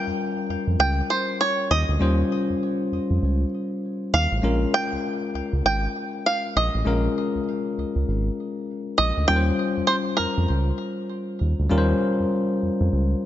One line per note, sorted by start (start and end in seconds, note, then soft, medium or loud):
0.00 1.97 G3 medium
0.00 1.97 C#4 medium
0.00 1.97 F4 medium
0.00 2.01 A#4 medium
0.00 0.46 G5 loud
0.07 0.12 F2 soft
0.49 0.56 F2 soft
0.67 0.76 F2 medium
0.79 1.01 C#2 medium
0.79 1.11 G5 medium
1.10 1.38 C5 medium
1.41 1.72 C#5 medium
1.70 1.84 D#2 medium
1.70 3.49 D#5 medium
1.88 1.97 D2 medium
2.00 2.23 D#2 loud
2.00 4.39 G3 medium
2.00 4.39 C#4 medium
2.00 4.39 F4 medium
2.00 4.40 C5 medium
2.49 2.54 F2 soft
2.92 2.99 F2 soft
3.10 3.19 F2 medium
3.22 3.44 C#2 loud
4.13 4.27 D#2 medium
4.13 4.74 F5 medium
4.31 4.40 A1 medium
4.42 4.65 A#1 loud
4.42 6.81 G#3 medium
4.42 6.82 C#4 medium
4.42 6.82 F4 medium
4.42 6.82 A#4 medium
4.74 5.65 G5 loud
4.92 4.97 C#2 soft
5.34 5.41 C#2 soft
5.52 5.61 C#2 loud
5.64 5.87 G#1 medium
5.64 6.26 G5 loud
6.26 6.57 F5 medium
6.56 6.69 A#1 medium
6.56 7.43 D#5 medium
6.74 6.83 A1 medium
6.85 7.08 A#1 loud
6.85 9.24 G#3 medium
6.85 9.24 C#4 medium
6.85 9.24 F4 medium
6.85 9.25 A#4 medium
7.35 7.40 C#2 soft
7.77 7.85 C#2 soft
7.95 8.04 C#2 medium
8.08 8.30 G#1 loud
8.98 9.12 A#1 medium
8.98 9.26 D#5 medium
9.17 9.25 D2 medium
9.28 9.51 D#2 medium
9.28 11.66 G3 medium
9.28 11.67 C#4 medium
9.28 11.67 F4 medium
9.28 9.37 A#4 medium
9.28 9.90 G5 loud
9.36 11.71 C5 medium
9.77 9.82 F2 soft
9.87 9.96 C5 medium
10.17 10.26 F2 soft
10.17 13.26 A#4 medium
10.37 10.46 F2 medium
10.49 10.72 C#2 loud
11.41 11.54 D#2 medium
11.59 11.68 D2 medium
11.69 11.93 D#2 loud
11.69 13.26 G3 medium
11.69 13.26 C#4 medium
11.69 13.26 F4 medium
11.69 11.79 A#4 medium
11.78 13.26 C5 medium
12.20 12.24 F2 medium
12.62 12.69 F2 soft
12.80 12.89 F2 medium
12.92 13.14 C#2 medium